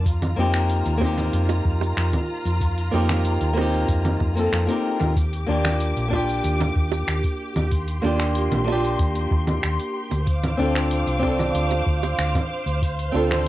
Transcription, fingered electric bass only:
0, 0, Header, 1, 2, 480
1, 0, Start_track
1, 0, Tempo, 638298
1, 44, Time_signature, 4, 2, 24, 8
1, 10139, End_track
2, 0, Start_track
2, 0, Title_t, "Fingered electric bass"
2, 0, Program_c, 0, 33
2, 0, Note_on_c, 0, 41, 90
2, 248, Note_off_c, 0, 41, 0
2, 282, Note_on_c, 0, 41, 94
2, 608, Note_off_c, 0, 41, 0
2, 645, Note_on_c, 0, 39, 96
2, 968, Note_off_c, 0, 39, 0
2, 1001, Note_on_c, 0, 41, 89
2, 1198, Note_off_c, 0, 41, 0
2, 1243, Note_on_c, 0, 41, 79
2, 1439, Note_off_c, 0, 41, 0
2, 1482, Note_on_c, 0, 41, 82
2, 1582, Note_off_c, 0, 41, 0
2, 1845, Note_on_c, 0, 41, 83
2, 2168, Note_off_c, 0, 41, 0
2, 2203, Note_on_c, 0, 41, 91
2, 2529, Note_off_c, 0, 41, 0
2, 2566, Note_on_c, 0, 39, 88
2, 2889, Note_off_c, 0, 39, 0
2, 2921, Note_on_c, 0, 41, 86
2, 3118, Note_off_c, 0, 41, 0
2, 3160, Note_on_c, 0, 41, 80
2, 3358, Note_off_c, 0, 41, 0
2, 3403, Note_on_c, 0, 41, 81
2, 3502, Note_off_c, 0, 41, 0
2, 3767, Note_on_c, 0, 39, 85
2, 4089, Note_off_c, 0, 39, 0
2, 4124, Note_on_c, 0, 39, 98
2, 4450, Note_off_c, 0, 39, 0
2, 4487, Note_on_c, 0, 34, 88
2, 4809, Note_off_c, 0, 34, 0
2, 4844, Note_on_c, 0, 39, 92
2, 5040, Note_off_c, 0, 39, 0
2, 5081, Note_on_c, 0, 39, 76
2, 5278, Note_off_c, 0, 39, 0
2, 5321, Note_on_c, 0, 39, 86
2, 5421, Note_off_c, 0, 39, 0
2, 5684, Note_on_c, 0, 39, 84
2, 6008, Note_off_c, 0, 39, 0
2, 6042, Note_on_c, 0, 39, 94
2, 6369, Note_off_c, 0, 39, 0
2, 6403, Note_on_c, 0, 34, 94
2, 6727, Note_off_c, 0, 34, 0
2, 6761, Note_on_c, 0, 39, 90
2, 6958, Note_off_c, 0, 39, 0
2, 7001, Note_on_c, 0, 39, 82
2, 7199, Note_off_c, 0, 39, 0
2, 7243, Note_on_c, 0, 39, 87
2, 7343, Note_off_c, 0, 39, 0
2, 7606, Note_on_c, 0, 38, 86
2, 7929, Note_off_c, 0, 38, 0
2, 7961, Note_on_c, 0, 38, 96
2, 8288, Note_off_c, 0, 38, 0
2, 8322, Note_on_c, 0, 36, 91
2, 8647, Note_off_c, 0, 36, 0
2, 8681, Note_on_c, 0, 38, 92
2, 8878, Note_off_c, 0, 38, 0
2, 8921, Note_on_c, 0, 38, 79
2, 9118, Note_off_c, 0, 38, 0
2, 9161, Note_on_c, 0, 38, 79
2, 9262, Note_off_c, 0, 38, 0
2, 9521, Note_on_c, 0, 38, 85
2, 9846, Note_off_c, 0, 38, 0
2, 9882, Note_on_c, 0, 38, 94
2, 10139, Note_off_c, 0, 38, 0
2, 10139, End_track
0, 0, End_of_file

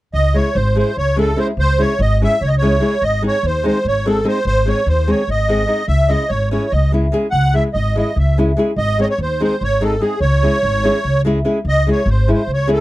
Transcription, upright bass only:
0, 0, Header, 1, 2, 480
1, 0, Start_track
1, 0, Key_signature, 4, "minor"
1, 0, Tempo, 410959
1, 162, Time_signature, 7, 3, 24, 8
1, 14955, End_track
2, 0, Start_track
2, 0, Title_t, "Upright bass"
2, 0, Program_c, 0, 32
2, 157, Note_on_c, 0, 37, 83
2, 451, Note_off_c, 0, 37, 0
2, 645, Note_on_c, 0, 32, 92
2, 939, Note_off_c, 0, 32, 0
2, 1133, Note_on_c, 0, 37, 69
2, 1556, Note_off_c, 0, 37, 0
2, 1833, Note_on_c, 0, 37, 82
2, 2128, Note_off_c, 0, 37, 0
2, 2324, Note_on_c, 0, 32, 104
2, 2618, Note_off_c, 0, 32, 0
2, 2818, Note_on_c, 0, 37, 91
2, 3239, Note_off_c, 0, 37, 0
2, 3522, Note_on_c, 0, 32, 80
2, 3814, Note_off_c, 0, 32, 0
2, 4006, Note_on_c, 0, 39, 96
2, 4300, Note_off_c, 0, 39, 0
2, 4493, Note_on_c, 0, 32, 84
2, 4916, Note_off_c, 0, 32, 0
2, 5198, Note_on_c, 0, 32, 84
2, 5492, Note_off_c, 0, 32, 0
2, 5679, Note_on_c, 0, 39, 92
2, 5975, Note_off_c, 0, 39, 0
2, 6162, Note_on_c, 0, 32, 75
2, 6589, Note_off_c, 0, 32, 0
2, 6866, Note_on_c, 0, 37, 85
2, 7163, Note_off_c, 0, 37, 0
2, 7358, Note_on_c, 0, 32, 86
2, 7654, Note_off_c, 0, 32, 0
2, 7851, Note_on_c, 0, 37, 91
2, 8275, Note_off_c, 0, 37, 0
2, 8552, Note_on_c, 0, 37, 87
2, 8848, Note_off_c, 0, 37, 0
2, 9045, Note_on_c, 0, 32, 91
2, 9340, Note_off_c, 0, 32, 0
2, 9531, Note_on_c, 0, 37, 86
2, 9956, Note_off_c, 0, 37, 0
2, 10236, Note_on_c, 0, 32, 88
2, 10531, Note_off_c, 0, 32, 0
2, 10726, Note_on_c, 0, 39, 92
2, 11021, Note_off_c, 0, 39, 0
2, 11226, Note_on_c, 0, 32, 79
2, 11647, Note_off_c, 0, 32, 0
2, 11919, Note_on_c, 0, 37, 93
2, 12214, Note_off_c, 0, 37, 0
2, 12412, Note_on_c, 0, 32, 92
2, 12705, Note_off_c, 0, 32, 0
2, 12900, Note_on_c, 0, 37, 74
2, 13322, Note_off_c, 0, 37, 0
2, 13603, Note_on_c, 0, 37, 83
2, 13896, Note_off_c, 0, 37, 0
2, 14083, Note_on_c, 0, 32, 101
2, 14378, Note_off_c, 0, 32, 0
2, 14568, Note_on_c, 0, 37, 79
2, 14955, Note_off_c, 0, 37, 0
2, 14955, End_track
0, 0, End_of_file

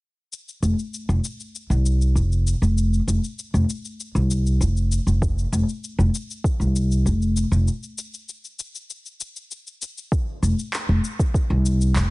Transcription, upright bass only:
0, 0, Header, 1, 2, 480
1, 0, Start_track
1, 0, Tempo, 612245
1, 252, Time_signature, 4, 2, 24, 8
1, 9489, End_track
2, 0, Start_track
2, 0, Title_t, "Upright bass"
2, 0, Program_c, 0, 32
2, 490, Note_on_c, 0, 29, 80
2, 567, Note_off_c, 0, 29, 0
2, 853, Note_on_c, 0, 29, 84
2, 927, Note_off_c, 0, 29, 0
2, 1332, Note_on_c, 0, 36, 78
2, 1689, Note_on_c, 0, 29, 68
2, 1701, Note_off_c, 0, 36, 0
2, 1979, Note_off_c, 0, 29, 0
2, 2053, Note_on_c, 0, 29, 80
2, 2340, Note_off_c, 0, 29, 0
2, 2411, Note_on_c, 0, 29, 78
2, 2488, Note_off_c, 0, 29, 0
2, 2774, Note_on_c, 0, 29, 91
2, 2847, Note_off_c, 0, 29, 0
2, 3253, Note_on_c, 0, 36, 80
2, 3611, Note_on_c, 0, 29, 71
2, 3623, Note_off_c, 0, 36, 0
2, 3900, Note_off_c, 0, 29, 0
2, 3972, Note_on_c, 0, 29, 76
2, 4259, Note_off_c, 0, 29, 0
2, 4331, Note_on_c, 0, 29, 85
2, 4408, Note_off_c, 0, 29, 0
2, 4693, Note_on_c, 0, 29, 88
2, 4766, Note_off_c, 0, 29, 0
2, 5172, Note_on_c, 0, 36, 81
2, 5533, Note_on_c, 0, 29, 71
2, 5545, Note_off_c, 0, 36, 0
2, 5820, Note_off_c, 0, 29, 0
2, 5893, Note_on_c, 0, 29, 85
2, 6011, Note_off_c, 0, 29, 0
2, 8173, Note_on_c, 0, 29, 82
2, 8249, Note_off_c, 0, 29, 0
2, 8537, Note_on_c, 0, 29, 90
2, 8609, Note_off_c, 0, 29, 0
2, 9017, Note_on_c, 0, 36, 85
2, 9374, Note_on_c, 0, 29, 75
2, 9386, Note_off_c, 0, 36, 0
2, 9489, Note_off_c, 0, 29, 0
2, 9489, End_track
0, 0, End_of_file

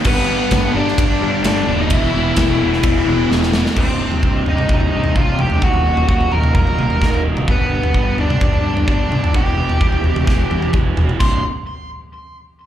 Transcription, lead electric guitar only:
0, 0, Header, 1, 2, 480
1, 0, Start_track
1, 0, Tempo, 464037
1, 65, Time_signature, 4, 2, 24, 8
1, 13098, End_track
2, 0, Start_track
2, 0, Title_t, "Lead electric guitar"
2, 0, Program_c, 0, 29
2, 70, Note_on_c, 0, 71, 92
2, 81, Note_on_c, 0, 59, 68
2, 744, Note_off_c, 0, 71, 0
2, 750, Note_off_c, 0, 59, 0
2, 791, Note_on_c, 0, 62, 88
2, 794, Note_on_c, 0, 74, 92
2, 1465, Note_off_c, 0, 62, 0
2, 1493, Note_off_c, 0, 74, 0
2, 1506, Note_on_c, 0, 62, 90
2, 1509, Note_on_c, 0, 74, 93
2, 1838, Note_off_c, 0, 62, 0
2, 1871, Note_off_c, 0, 74, 0
2, 1873, Note_on_c, 0, 63, 90
2, 1875, Note_on_c, 0, 75, 89
2, 1979, Note_off_c, 0, 63, 0
2, 1989, Note_off_c, 0, 75, 0
2, 1989, Note_on_c, 0, 64, 73
2, 1995, Note_on_c, 0, 76, 98
2, 3380, Note_off_c, 0, 64, 0
2, 3383, Note_off_c, 0, 76, 0
2, 3909, Note_on_c, 0, 60, 64
2, 3914, Note_on_c, 0, 72, 61
2, 4583, Note_off_c, 0, 60, 0
2, 4583, Note_off_c, 0, 72, 0
2, 4641, Note_on_c, 0, 75, 76
2, 4652, Note_on_c, 0, 63, 59
2, 4859, Note_off_c, 0, 63, 0
2, 4876, Note_off_c, 0, 75, 0
2, 4888, Note_on_c, 0, 63, 65
2, 4893, Note_on_c, 0, 75, 61
2, 5321, Note_off_c, 0, 75, 0
2, 5322, Note_off_c, 0, 63, 0
2, 5343, Note_on_c, 0, 77, 88
2, 5349, Note_on_c, 0, 65, 72
2, 5564, Note_off_c, 0, 77, 0
2, 5567, Note_off_c, 0, 65, 0
2, 5586, Note_on_c, 0, 79, 94
2, 5597, Note_on_c, 0, 67, 74
2, 5812, Note_off_c, 0, 67, 0
2, 5825, Note_off_c, 0, 79, 0
2, 5829, Note_on_c, 0, 78, 87
2, 5834, Note_on_c, 0, 66, 71
2, 6274, Note_off_c, 0, 66, 0
2, 6284, Note_off_c, 0, 78, 0
2, 6296, Note_on_c, 0, 78, 97
2, 6301, Note_on_c, 0, 66, 79
2, 6524, Note_off_c, 0, 66, 0
2, 6537, Note_on_c, 0, 82, 90
2, 6546, Note_off_c, 0, 78, 0
2, 6547, Note_on_c, 0, 70, 74
2, 6759, Note_off_c, 0, 82, 0
2, 6767, Note_off_c, 0, 70, 0
2, 6771, Note_on_c, 0, 82, 81
2, 6782, Note_on_c, 0, 70, 71
2, 7456, Note_off_c, 0, 82, 0
2, 7461, Note_off_c, 0, 70, 0
2, 7751, Note_on_c, 0, 59, 59
2, 7768, Note_on_c, 0, 71, 77
2, 8426, Note_off_c, 0, 59, 0
2, 8435, Note_off_c, 0, 71, 0
2, 8473, Note_on_c, 0, 62, 71
2, 8489, Note_on_c, 0, 74, 91
2, 9148, Note_off_c, 0, 62, 0
2, 9190, Note_off_c, 0, 74, 0
2, 9201, Note_on_c, 0, 62, 83
2, 9205, Note_on_c, 0, 74, 82
2, 9640, Note_off_c, 0, 62, 0
2, 9641, Note_off_c, 0, 74, 0
2, 9677, Note_on_c, 0, 67, 75
2, 9681, Note_on_c, 0, 79, 101
2, 10591, Note_off_c, 0, 79, 0
2, 10591, Note_on_c, 0, 78, 101
2, 11070, Note_off_c, 0, 67, 0
2, 11073, Note_off_c, 0, 78, 0
2, 11587, Note_on_c, 0, 84, 86
2, 11810, Note_off_c, 0, 84, 0
2, 13098, End_track
0, 0, End_of_file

